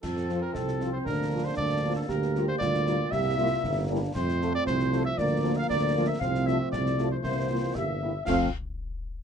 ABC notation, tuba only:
X:1
M:2/4
L:1/8
Q:1/4=117
K:F
V:1 name="Tuba" clef=bass
F,,2 C,,2 | D,,2 D,,2 | D,,2 D,,2 | C,,2 G,,,2 |
F,,2 C,,2 | D,,2 D,,2 | C,,2 C,,2 | C,,2 G,,,2 |
F,, z3 |]